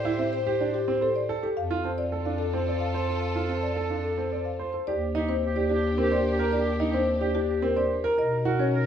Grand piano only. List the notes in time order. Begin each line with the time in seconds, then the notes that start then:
0.05 E4
0.19 C4
0.47 G4
0.61 D4
0.88 C4
1.02 C5
1.29 A4
1.43 G4
1.71 F4
1.85 C4
2.12 A4
2.26 D4
2.53 C4
2.67 D5
2.94 C5
3.08 A4
3.35 F4
3.49 C4
3.77 A4
3.90 D4
4.18 C4
4.32 D5
4.59 C5
4.74 A4
4.88 G4
5.15 D#4
5.29 C4
5.56 G4
5.70 D4
5.98 C4
6.12 C5
6.39 A#4
6.52 G4
6.80 D#4
6.94 C4
7.21 G4
7.35 D4
7.62 C4
7.76 C5
8.04 A#4
8.18 A#4
8.45 F#4
8.59 C#4